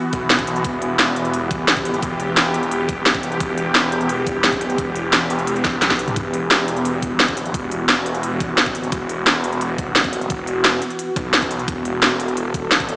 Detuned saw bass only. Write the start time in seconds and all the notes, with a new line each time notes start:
0.13 B1
0.47 B1
0.65 E1
2.02 E1
3.01 D1
3.23 C1
3.40 E1
4.36 D#1
4.63 D1
4.78 E1
5.30 E1
5.82 B1
6.16 E1
7.12 D#1
7.39 D1
7.54 E1
8.50 D#1
8.77 D1
8.92 E1
10.30 E1
11.16 B1
11.51 B1
11.68 E1
12.64 D#1
12.91 D1